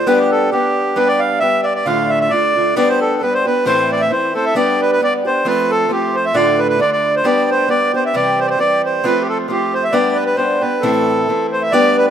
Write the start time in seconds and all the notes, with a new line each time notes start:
0.06 G3 B3 D4 G4 B4
0.19 G4
0.31 A4
0.51 G3 B3 D4 G4
0.96 G3 B3 D4 G4 B4
1.08 D5
1.19 F5
1.40 G3 B3 D4 G4 E5
1.62 D5 E5
1.75 D5
1.85 D2 A2 D3 A3 D4 F4 F5
2.09 E5
2.21 E5
2.30 D3 A3 D4 F4 D5
2.55 D3 A3 D4 F4
2.76 G3 B3 D4 G4 D5
2.89 C5
3.01 A4
3.21 G3 B3 D4 G4 B4
3.34 C5
3.45 B3 D4 G4 B4
3.65 A2 E3 A3 C4 E4 C5
3.92 D5
4.01 E5
4.10 E3 A3 C4 E4 C5
4.34 A3 C4 E4 A4 C5
4.46 E5
4.55 G3 B3 D4 G4 D5
4.81 B4
4.92 B4
5.00 G3 B3 D4 G4 D5
5.25 B3 D4 G4 C5
5.45 F3 A3 C4 F4 B4
5.70 A4
5.89 F3 A3 C4 F4 G4
6.15 C5
6.25 E5
6.34 D2 A2 D3 A3 D4 F4 D5
6.59 B4
6.69 B4
6.79 D3 A3 D4 F4 D5
6.92 D5
7.16 C5
7.24 G3 B3 D4 G4 D5
7.50 C5
7.68 G3 B3 D4 G4 D5
7.93 B3 D4 G4 C5
8.06 E5
8.14 C3 E3 G3 C4 G4 D5
8.39 C5
8.47 C5 D5
8.58 E3 G3 C4 G4 D5
8.85 C5
9.04 F3 A3 C4 F4 B4
9.21 G4
9.29 A4
9.48 F3 A3 C4 F4 G4
9.74 C5
9.84 E5
9.92 G3 B3 D4 G4 D5
10.16 B4
10.26 B4
10.36 G3 B3 D4 G4 C5
10.61 B3 D4 G4 B4
10.81 A2 E3 A3 C4 E4 A4
11.28 E3 A3 C4 E4
11.52 C5
11.62 E5
11.72 G3 B3 D4 G4 D5
11.97 B4